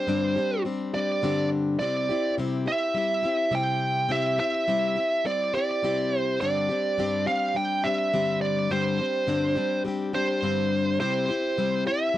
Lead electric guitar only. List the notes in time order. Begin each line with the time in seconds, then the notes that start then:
Already playing: C5
0.94 D5
1.79 D5
2.68 E5
3.55 G5
4.12 E5
4.40 E5
5.27 D5
5.55 D5
6.19 C5
6.41 D5
7.27 F5
7.56 G5
7.84 E5
8.41 D5
8.71 C5
10.15 C5
11.00 C5
11.87 E5